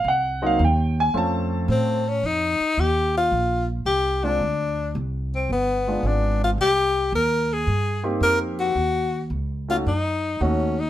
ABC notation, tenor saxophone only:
X:1
M:4/4
L:1/8
Q:"Swing" 1/4=110
K:Fphr
V:1 name="Tenor saxophone"
z6 C D | [K:Fm] E2 G F2 z G =D- | =D2 z C =B,2 D F | G2 B A2 z B _G- |
_G2 z F E2 D E |]